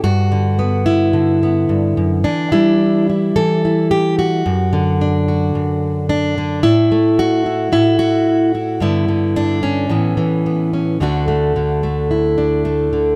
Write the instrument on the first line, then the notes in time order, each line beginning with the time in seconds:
steel-string acoustic guitar
0.04 G2 F#4
0.32 D3
0.59 B3
0.86 E4
1.13 D3
1.43 B3
1.69 G2
1.97 F#2
2.24 E3 D4
2.52 G3 E4
3.10 E4
3.36 E3 A4
3.65 E4
3.91 G4
4.19 F#4
4.46 F#2
4.73 D3
5.01 D4
5.28 F#4
5.55 F#2
6.09 D4
6.38 D3
6.63 A2 E4
6.92 A3
7.19 F#4
7.46 E4
7.72 A2 E4
7.99 F#4
8.55 E4
8.80 G2 D3 B3 E4
9.08 D3
9.36 D4
9.63 C#4
9.89 A2 E3 B3
10.17 E3
10.46 B3
10.73 C#4
11.00 D2 D3 A3 D4 F#4
11.28 A3
11.56 D3
11.83 A3
12.11 E4
12.38 D4
12.65 A3
12.93 D3